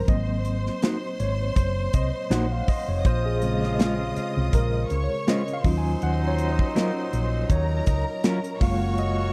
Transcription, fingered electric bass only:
0, 0, Header, 1, 3, 480
1, 0, Start_track
1, 0, Key_signature, -5, "minor"
1, 0, Tempo, 741656
1, 52, Time_signature, 4, 2, 24, 8
1, 6037, End_track
2, 0, Start_track
2, 0, Title_t, "Fingered electric bass"
2, 0, Program_c, 0, 33
2, 55, Note_on_c, 0, 32, 103
2, 438, Note_off_c, 0, 32, 0
2, 775, Note_on_c, 0, 32, 78
2, 966, Note_off_c, 0, 32, 0
2, 1014, Note_on_c, 0, 30, 91
2, 1206, Note_off_c, 0, 30, 0
2, 1255, Note_on_c, 0, 36, 86
2, 1358, Note_off_c, 0, 36, 0
2, 1491, Note_on_c, 0, 34, 88
2, 1684, Note_off_c, 0, 34, 0
2, 1865, Note_on_c, 0, 29, 83
2, 1953, Note_off_c, 0, 29, 0
2, 1977, Note_on_c, 0, 34, 93
2, 2670, Note_off_c, 0, 34, 0
2, 2829, Note_on_c, 0, 36, 76
2, 2915, Note_off_c, 0, 36, 0
2, 2935, Note_on_c, 0, 34, 98
2, 3126, Note_off_c, 0, 34, 0
2, 3178, Note_on_c, 0, 37, 96
2, 3280, Note_off_c, 0, 37, 0
2, 3654, Note_on_c, 0, 39, 94
2, 3846, Note_off_c, 0, 39, 0
2, 3900, Note_on_c, 0, 39, 94
2, 4282, Note_off_c, 0, 39, 0
2, 4616, Note_on_c, 0, 34, 87
2, 4807, Note_off_c, 0, 34, 0
2, 4853, Note_on_c, 0, 39, 100
2, 5046, Note_off_c, 0, 39, 0
2, 5095, Note_on_c, 0, 37, 78
2, 5199, Note_off_c, 0, 37, 0
2, 5576, Note_on_c, 0, 30, 105
2, 6037, Note_off_c, 0, 30, 0
2, 6037, End_track
3, 0, Start_track
3, 0, Title_t, "Muted fingered electric bass strokes"
3, 2698, Note_on_c, 9, 29, 41
3, 2763, Note_off_c, 9, 29, 0
3, 6037, End_track
0, 0, End_of_file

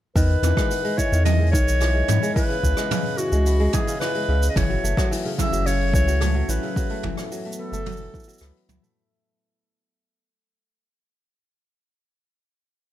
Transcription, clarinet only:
0, 0, Header, 1, 2, 480
1, 0, Start_track
1, 0, Key_signature, 4, "major"
1, 0, Tempo, 550459
1, 137, Time_signature, 4, 2, 24, 8
1, 11270, End_track
2, 0, Start_track
2, 0, Title_t, "Clarinet"
2, 0, Program_c, 0, 71
2, 141, Note_on_c, 0, 71, 99
2, 851, Note_on_c, 0, 73, 93
2, 864, Note_off_c, 0, 71, 0
2, 1085, Note_off_c, 0, 73, 0
2, 1091, Note_on_c, 0, 75, 105
2, 1317, Note_off_c, 0, 75, 0
2, 1325, Note_on_c, 0, 73, 107
2, 2016, Note_off_c, 0, 73, 0
2, 2043, Note_on_c, 0, 71, 98
2, 2771, Note_on_c, 0, 66, 87
2, 2784, Note_off_c, 0, 71, 0
2, 3259, Note_on_c, 0, 68, 85
2, 3272, Note_off_c, 0, 66, 0
2, 3480, Note_off_c, 0, 68, 0
2, 3486, Note_on_c, 0, 71, 92
2, 3880, Note_off_c, 0, 71, 0
2, 3919, Note_on_c, 0, 75, 66
2, 3977, Note_on_c, 0, 73, 86
2, 3990, Note_off_c, 0, 75, 0
2, 4461, Note_off_c, 0, 73, 0
2, 4709, Note_on_c, 0, 76, 96
2, 4939, Note_on_c, 0, 73, 98
2, 4952, Note_off_c, 0, 76, 0
2, 5178, Note_off_c, 0, 73, 0
2, 5191, Note_on_c, 0, 73, 103
2, 5667, Note_on_c, 0, 71, 83
2, 5680, Note_off_c, 0, 73, 0
2, 6382, Note_off_c, 0, 71, 0
2, 6623, Note_on_c, 0, 69, 116
2, 7545, Note_off_c, 0, 69, 0
2, 11270, End_track
0, 0, End_of_file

